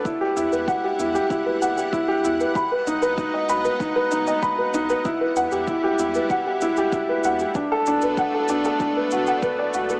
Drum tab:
SH |x-xxx-xxx-xxx-xx|x-xxx-xxx-xxx-xx|x-xxx-xxx-xxx-xx|x-xxx-xxx-xxx-xx|
BD |o---o---o---o---|o---o---o---o---|o---o---o---o---|o---o---o---o---|